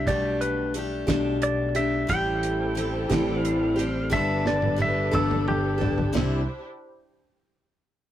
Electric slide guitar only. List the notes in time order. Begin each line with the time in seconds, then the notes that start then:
0.08 D5
0.41 B4
1.43 D5
1.76 E5
2.10 G5
3.39 F5
4.13 E5
4.47 D5
4.82 E5
5.15 A4
5.48 G4